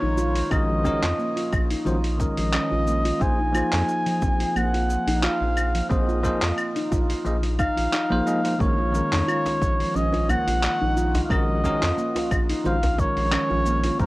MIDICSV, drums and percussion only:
0, 0, Header, 1, 3, 480
1, 0, Start_track
1, 0, Tempo, 674157
1, 365, Time_signature, 4, 2, 24, 8
1, 10011, End_track
2, 0, Start_track
2, 0, Title_t, "Djembe"
2, 6493, Note_on_c, 9, 63, 59
2, 6564, Note_off_c, 9, 63, 0
2, 6733, Note_on_c, 9, 62, 71
2, 6804, Note_off_c, 9, 62, 0
2, 7077, Note_on_c, 9, 62, 50
2, 7149, Note_off_c, 9, 62, 0
2, 7208, Note_on_c, 9, 63, 75
2, 7280, Note_off_c, 9, 63, 0
2, 7326, Note_on_c, 9, 64, 80
2, 7329, Note_on_c, 9, 62, 49
2, 7397, Note_off_c, 9, 64, 0
2, 7400, Note_off_c, 9, 62, 0
2, 7934, Note_on_c, 9, 63, 59
2, 7935, Note_on_c, 9, 62, 66
2, 7938, Note_on_c, 9, 64, 79
2, 8006, Note_off_c, 9, 63, 0
2, 8007, Note_off_c, 9, 62, 0
2, 8009, Note_off_c, 9, 64, 0
2, 8417, Note_on_c, 9, 63, 67
2, 8488, Note_off_c, 9, 63, 0
2, 8656, Note_on_c, 9, 62, 73
2, 8727, Note_off_c, 9, 62, 0
2, 9138, Note_on_c, 9, 64, 94
2, 9139, Note_on_c, 9, 62, 64
2, 9209, Note_off_c, 9, 64, 0
2, 9210, Note_off_c, 9, 62, 0
2, 9246, Note_on_c, 9, 63, 77
2, 9317, Note_off_c, 9, 63, 0
2, 9618, Note_on_c, 9, 63, 61
2, 9689, Note_off_c, 9, 63, 0
2, 9854, Note_on_c, 9, 63, 58
2, 9925, Note_off_c, 9, 63, 0
2, 10011, End_track
3, 0, Start_track
3, 0, Title_t, "Drums"
3, 125, Note_on_c, 9, 82, 80
3, 196, Note_off_c, 9, 82, 0
3, 253, Note_on_c, 9, 46, 55
3, 253, Note_on_c, 9, 82, 33
3, 324, Note_off_c, 9, 46, 0
3, 324, Note_off_c, 9, 82, 0
3, 364, Note_on_c, 9, 75, 81
3, 364, Note_on_c, 9, 82, 48
3, 366, Note_on_c, 9, 36, 126
3, 435, Note_off_c, 9, 75, 0
3, 436, Note_off_c, 9, 82, 0
3, 437, Note_off_c, 9, 36, 0
3, 604, Note_on_c, 9, 82, 86
3, 606, Note_on_c, 9, 36, 61
3, 675, Note_off_c, 9, 82, 0
3, 677, Note_off_c, 9, 36, 0
3, 734, Note_on_c, 9, 39, 74
3, 734, Note_on_c, 9, 46, 53
3, 735, Note_on_c, 9, 82, 33
3, 805, Note_off_c, 9, 39, 0
3, 805, Note_off_c, 9, 46, 0
3, 806, Note_off_c, 9, 82, 0
3, 846, Note_on_c, 9, 82, 46
3, 917, Note_off_c, 9, 82, 0
3, 973, Note_on_c, 9, 46, 46
3, 974, Note_on_c, 9, 82, 33
3, 1045, Note_off_c, 9, 46, 0
3, 1045, Note_off_c, 9, 82, 0
3, 1085, Note_on_c, 9, 36, 115
3, 1085, Note_on_c, 9, 75, 71
3, 1086, Note_on_c, 9, 82, 81
3, 1156, Note_off_c, 9, 75, 0
3, 1157, Note_off_c, 9, 36, 0
3, 1157, Note_off_c, 9, 82, 0
3, 1213, Note_on_c, 9, 46, 53
3, 1214, Note_on_c, 9, 82, 33
3, 1284, Note_off_c, 9, 46, 0
3, 1285, Note_off_c, 9, 82, 0
3, 1325, Note_on_c, 9, 82, 44
3, 1396, Note_off_c, 9, 82, 0
3, 1453, Note_on_c, 9, 46, 44
3, 1525, Note_off_c, 9, 46, 0
3, 1566, Note_on_c, 9, 36, 102
3, 1566, Note_on_c, 9, 82, 84
3, 1637, Note_off_c, 9, 36, 0
3, 1637, Note_off_c, 9, 82, 0
3, 1691, Note_on_c, 9, 46, 53
3, 1691, Note_on_c, 9, 82, 34
3, 1762, Note_off_c, 9, 46, 0
3, 1763, Note_off_c, 9, 82, 0
3, 1803, Note_on_c, 9, 39, 85
3, 1803, Note_on_c, 9, 75, 77
3, 1804, Note_on_c, 9, 82, 49
3, 1874, Note_off_c, 9, 39, 0
3, 1874, Note_off_c, 9, 75, 0
3, 1875, Note_off_c, 9, 82, 0
3, 2044, Note_on_c, 9, 82, 80
3, 2115, Note_off_c, 9, 82, 0
3, 2173, Note_on_c, 9, 46, 56
3, 2174, Note_on_c, 9, 82, 35
3, 2244, Note_off_c, 9, 46, 0
3, 2245, Note_off_c, 9, 82, 0
3, 2285, Note_on_c, 9, 82, 46
3, 2286, Note_on_c, 9, 36, 121
3, 2356, Note_off_c, 9, 82, 0
3, 2357, Note_off_c, 9, 36, 0
3, 2524, Note_on_c, 9, 75, 81
3, 2525, Note_on_c, 9, 82, 86
3, 2595, Note_off_c, 9, 75, 0
3, 2596, Note_off_c, 9, 82, 0
3, 2651, Note_on_c, 9, 39, 70
3, 2651, Note_on_c, 9, 46, 49
3, 2652, Note_on_c, 9, 82, 35
3, 2722, Note_off_c, 9, 39, 0
3, 2722, Note_off_c, 9, 46, 0
3, 2723, Note_off_c, 9, 82, 0
3, 2766, Note_on_c, 9, 82, 49
3, 2837, Note_off_c, 9, 82, 0
3, 2894, Note_on_c, 9, 46, 45
3, 2894, Note_on_c, 9, 82, 34
3, 2965, Note_off_c, 9, 46, 0
3, 2966, Note_off_c, 9, 82, 0
3, 3004, Note_on_c, 9, 82, 78
3, 3006, Note_on_c, 9, 36, 115
3, 3075, Note_off_c, 9, 82, 0
3, 3078, Note_off_c, 9, 36, 0
3, 3134, Note_on_c, 9, 46, 52
3, 3135, Note_on_c, 9, 82, 33
3, 3206, Note_off_c, 9, 46, 0
3, 3206, Note_off_c, 9, 82, 0
3, 3247, Note_on_c, 9, 75, 70
3, 3248, Note_on_c, 9, 82, 49
3, 3319, Note_off_c, 9, 75, 0
3, 3319, Note_off_c, 9, 82, 0
3, 3376, Note_on_c, 9, 46, 43
3, 3448, Note_off_c, 9, 46, 0
3, 3487, Note_on_c, 9, 82, 84
3, 3558, Note_off_c, 9, 82, 0
3, 3615, Note_on_c, 9, 46, 53
3, 3616, Note_on_c, 9, 82, 34
3, 3686, Note_off_c, 9, 46, 0
3, 3687, Note_off_c, 9, 82, 0
3, 3726, Note_on_c, 9, 39, 82
3, 3727, Note_on_c, 9, 82, 47
3, 3797, Note_off_c, 9, 39, 0
3, 3798, Note_off_c, 9, 82, 0
3, 3965, Note_on_c, 9, 75, 79
3, 3966, Note_on_c, 9, 82, 80
3, 4036, Note_off_c, 9, 75, 0
3, 4037, Note_off_c, 9, 82, 0
3, 4094, Note_on_c, 9, 46, 55
3, 4094, Note_on_c, 9, 82, 33
3, 4165, Note_off_c, 9, 46, 0
3, 4165, Note_off_c, 9, 82, 0
3, 4205, Note_on_c, 9, 36, 126
3, 4207, Note_on_c, 9, 82, 48
3, 4276, Note_off_c, 9, 36, 0
3, 4278, Note_off_c, 9, 82, 0
3, 4336, Note_on_c, 9, 82, 31
3, 4407, Note_off_c, 9, 82, 0
3, 4445, Note_on_c, 9, 36, 63
3, 4445, Note_on_c, 9, 82, 90
3, 4517, Note_off_c, 9, 36, 0
3, 4517, Note_off_c, 9, 82, 0
3, 4572, Note_on_c, 9, 39, 77
3, 4572, Note_on_c, 9, 46, 49
3, 4573, Note_on_c, 9, 82, 32
3, 4643, Note_off_c, 9, 39, 0
3, 4643, Note_off_c, 9, 46, 0
3, 4644, Note_off_c, 9, 82, 0
3, 4684, Note_on_c, 9, 75, 77
3, 4685, Note_on_c, 9, 82, 46
3, 4755, Note_off_c, 9, 75, 0
3, 4756, Note_off_c, 9, 82, 0
3, 4813, Note_on_c, 9, 46, 41
3, 4813, Note_on_c, 9, 82, 33
3, 4884, Note_off_c, 9, 46, 0
3, 4885, Note_off_c, 9, 82, 0
3, 4925, Note_on_c, 9, 36, 111
3, 4925, Note_on_c, 9, 82, 78
3, 4997, Note_off_c, 9, 36, 0
3, 4997, Note_off_c, 9, 82, 0
3, 5053, Note_on_c, 9, 46, 52
3, 5054, Note_on_c, 9, 82, 35
3, 5124, Note_off_c, 9, 46, 0
3, 5125, Note_off_c, 9, 82, 0
3, 5165, Note_on_c, 9, 82, 46
3, 5236, Note_off_c, 9, 82, 0
3, 5291, Note_on_c, 9, 46, 42
3, 5363, Note_off_c, 9, 46, 0
3, 5403, Note_on_c, 9, 75, 72
3, 5403, Note_on_c, 9, 82, 85
3, 5406, Note_on_c, 9, 36, 110
3, 5474, Note_off_c, 9, 75, 0
3, 5475, Note_off_c, 9, 82, 0
3, 5477, Note_off_c, 9, 36, 0
3, 5534, Note_on_c, 9, 46, 49
3, 5535, Note_on_c, 9, 82, 36
3, 5606, Note_off_c, 9, 46, 0
3, 5606, Note_off_c, 9, 82, 0
3, 5646, Note_on_c, 9, 39, 78
3, 5646, Note_on_c, 9, 82, 47
3, 5717, Note_off_c, 9, 39, 0
3, 5718, Note_off_c, 9, 82, 0
3, 5887, Note_on_c, 9, 82, 76
3, 5958, Note_off_c, 9, 82, 0
3, 6016, Note_on_c, 9, 46, 51
3, 6017, Note_on_c, 9, 82, 37
3, 6087, Note_off_c, 9, 46, 0
3, 6088, Note_off_c, 9, 82, 0
3, 6126, Note_on_c, 9, 36, 127
3, 6127, Note_on_c, 9, 82, 44
3, 6197, Note_off_c, 9, 36, 0
3, 6198, Note_off_c, 9, 82, 0
3, 6368, Note_on_c, 9, 82, 77
3, 6439, Note_off_c, 9, 82, 0
3, 6497, Note_on_c, 9, 39, 67
3, 6497, Note_on_c, 9, 46, 46
3, 6498, Note_on_c, 9, 82, 29
3, 6568, Note_off_c, 9, 39, 0
3, 6568, Note_off_c, 9, 46, 0
3, 6569, Note_off_c, 9, 82, 0
3, 6610, Note_on_c, 9, 75, 79
3, 6610, Note_on_c, 9, 82, 45
3, 6681, Note_off_c, 9, 75, 0
3, 6681, Note_off_c, 9, 82, 0
3, 6736, Note_on_c, 9, 46, 43
3, 6737, Note_on_c, 9, 82, 32
3, 6807, Note_off_c, 9, 46, 0
3, 6808, Note_off_c, 9, 82, 0
3, 6846, Note_on_c, 9, 36, 105
3, 6847, Note_on_c, 9, 82, 76
3, 6917, Note_off_c, 9, 36, 0
3, 6919, Note_off_c, 9, 82, 0
3, 6978, Note_on_c, 9, 46, 51
3, 6978, Note_on_c, 9, 82, 35
3, 7049, Note_off_c, 9, 46, 0
3, 7050, Note_off_c, 9, 82, 0
3, 7089, Note_on_c, 9, 82, 42
3, 7161, Note_off_c, 9, 82, 0
3, 7218, Note_on_c, 9, 46, 39
3, 7289, Note_off_c, 9, 46, 0
3, 7330, Note_on_c, 9, 75, 76
3, 7330, Note_on_c, 9, 82, 77
3, 7401, Note_off_c, 9, 75, 0
3, 7401, Note_off_c, 9, 82, 0
3, 7459, Note_on_c, 9, 46, 51
3, 7460, Note_on_c, 9, 82, 35
3, 7530, Note_off_c, 9, 46, 0
3, 7531, Note_off_c, 9, 82, 0
3, 7569, Note_on_c, 9, 39, 79
3, 7570, Note_on_c, 9, 82, 49
3, 7640, Note_off_c, 9, 39, 0
3, 7641, Note_off_c, 9, 82, 0
3, 7808, Note_on_c, 9, 82, 81
3, 7879, Note_off_c, 9, 82, 0
3, 7937, Note_on_c, 9, 46, 54
3, 7938, Note_on_c, 9, 82, 33
3, 8009, Note_off_c, 9, 46, 0
3, 8009, Note_off_c, 9, 82, 0
3, 8046, Note_on_c, 9, 36, 125
3, 8051, Note_on_c, 9, 75, 89
3, 8052, Note_on_c, 9, 82, 44
3, 8118, Note_off_c, 9, 36, 0
3, 8122, Note_off_c, 9, 75, 0
3, 8123, Note_off_c, 9, 82, 0
3, 8286, Note_on_c, 9, 36, 55
3, 8291, Note_on_c, 9, 82, 81
3, 8357, Note_off_c, 9, 36, 0
3, 8362, Note_off_c, 9, 82, 0
3, 8419, Note_on_c, 9, 39, 66
3, 8419, Note_on_c, 9, 46, 49
3, 8420, Note_on_c, 9, 82, 33
3, 8491, Note_off_c, 9, 39, 0
3, 8491, Note_off_c, 9, 46, 0
3, 8491, Note_off_c, 9, 82, 0
3, 8529, Note_on_c, 9, 82, 45
3, 8600, Note_off_c, 9, 82, 0
3, 8658, Note_on_c, 9, 46, 49
3, 8658, Note_on_c, 9, 82, 31
3, 8729, Note_off_c, 9, 46, 0
3, 8729, Note_off_c, 9, 82, 0
3, 8766, Note_on_c, 9, 36, 106
3, 8766, Note_on_c, 9, 75, 79
3, 8767, Note_on_c, 9, 82, 77
3, 8837, Note_off_c, 9, 36, 0
3, 8837, Note_off_c, 9, 75, 0
3, 8838, Note_off_c, 9, 82, 0
3, 8897, Note_on_c, 9, 46, 53
3, 8897, Note_on_c, 9, 82, 32
3, 8968, Note_off_c, 9, 46, 0
3, 8969, Note_off_c, 9, 82, 0
3, 9007, Note_on_c, 9, 82, 45
3, 9078, Note_off_c, 9, 82, 0
3, 9136, Note_on_c, 9, 46, 44
3, 9207, Note_off_c, 9, 46, 0
3, 9246, Note_on_c, 9, 36, 104
3, 9247, Note_on_c, 9, 82, 73
3, 9317, Note_off_c, 9, 36, 0
3, 9318, Note_off_c, 9, 82, 0
3, 9376, Note_on_c, 9, 46, 52
3, 9377, Note_on_c, 9, 82, 33
3, 9447, Note_off_c, 9, 46, 0
3, 9448, Note_off_c, 9, 82, 0
3, 9486, Note_on_c, 9, 39, 79
3, 9486, Note_on_c, 9, 75, 89
3, 9487, Note_on_c, 9, 82, 44
3, 9557, Note_off_c, 9, 39, 0
3, 9557, Note_off_c, 9, 75, 0
3, 9558, Note_off_c, 9, 82, 0
3, 9725, Note_on_c, 9, 82, 80
3, 9796, Note_off_c, 9, 82, 0
3, 9852, Note_on_c, 9, 46, 56
3, 9853, Note_on_c, 9, 82, 32
3, 9923, Note_off_c, 9, 46, 0
3, 9924, Note_off_c, 9, 82, 0
3, 9965, Note_on_c, 9, 82, 44
3, 9966, Note_on_c, 9, 36, 113
3, 10011, Note_off_c, 9, 36, 0
3, 10011, Note_off_c, 9, 82, 0
3, 10011, End_track
0, 0, End_of_file